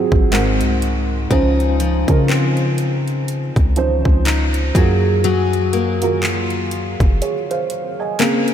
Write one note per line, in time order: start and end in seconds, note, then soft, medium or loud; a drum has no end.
0.00 0.31 G#2 medium
0.00 0.34 F#3 medium
0.00 0.44 F#3 medium
0.00 0.34 B3 medium
0.00 0.32 C4 medium
0.00 1.34 C4 medium
0.00 0.34 F4 medium
0.00 0.44 F4 medium
0.00 0.35 G#4 medium
0.00 downlifter medium
0.12 0.62 G#1 loud
0.12 kick medium
0.32 1.42 G#2 medium
0.32 1.14 G#3 medium
0.32 1.14 C4 medium
0.32 1.14 F#4 medium
0.32 1.15 A#4 medium
0.32 clap loud
0.32 closed hi-hat medium
0.61 1.27 C2 loud
0.61 closed hi-hat medium
0.82 closed hi-hat medium
1.30 2.05 C#2 loud
1.30 4.86 C#3 medium
1.30 1.89 F3 medium
1.30 1.89 C#4 medium
1.30 4.24 D#4 medium
1.30 1.89 D#4 medium
1.30 1.90 C5 medium
1.30 kick loud
1.30 closed hi-hat medium
1.60 closed hi-hat soft
1.80 4.75 F3 medium
1.80 closed hi-hat medium
2.08 3.52 C#3 loud
2.08 3.39 F3 medium
2.08 3.39 C#4 medium
2.08 3.40 D#4 medium
2.08 3.40 A#4 medium
2.08 kick medium
2.08 closed hi-hat medium
2.29 4.86 C4 medium
2.29 clap loud
2.29 closed hi-hat soft
2.57 closed hi-hat soft
2.78 closed hi-hat medium
3.08 closed hi-hat soft
3.28 closed hi-hat medium
3.56 4.03 C#2 loud
3.56 kick medium
3.56 closed hi-hat soft
3.76 4.75 F3 medium
3.76 4.75 C#4 medium
3.76 4.75 D#4 medium
3.76 4.76 C5 medium
3.76 closed hi-hat medium
4.05 4.72 C#2 loud
4.05 kick medium
4.25 4.86 D#4 medium
4.25 clap loud
4.25 closed hi-hat medium
4.54 closed hi-hat medium
4.75 6.96 F#2 loud
4.75 5.73 F#3 medium
4.75 5.23 F#3 medium
4.75 5.73 A#3 medium
4.75 5.74 F4 medium
4.75 5.74 G#4 loud
4.75 kick loud
4.75 closed hi-hat medium
5.24 8.19 F#3 medium
5.24 8.54 G#4 medium
5.24 closed hi-hat medium
5.53 closed hi-hat soft
5.73 8.19 A#3 medium
5.73 closed hi-hat medium
6.02 7.33 F#3 medium
6.02 7.33 A#3 medium
6.02 7.33 F4 medium
6.02 7.22 A#4 medium
6.02 closed hi-hat medium
6.22 8.54 F4 medium
6.22 clap loud
6.22 closed hi-hat soft
6.50 closed hi-hat soft
6.71 closed hi-hat medium
7.00 7.21 F#1 loud
7.00 kick medium
7.00 closed hi-hat soft
7.22 7.49 G#4 medium
7.22 7.48 C#5 medium
7.22 closed hi-hat medium
7.50 7.97 C5 medium
7.50 7.97 F5 medium
7.50 closed hi-hat soft
7.70 closed hi-hat medium
8.00 8.46 D#5 medium
8.00 8.46 G#5 medium
8.19 8.54 C#3 medium
8.19 8.54 A#3 medium
8.19 8.54 C4 medium
8.19 8.54 G#4 medium
8.19 clap loud
8.19 closed hi-hat medium
8.48 closed hi-hat medium